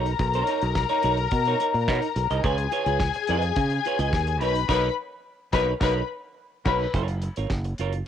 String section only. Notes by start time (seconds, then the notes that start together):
Already playing: A#4 A#5
2.45 G#4 G#5
4.41 B4 B5
4.69 B4 B5
5.53 B4 B5
5.82 B4 B5
6.66 B4 B5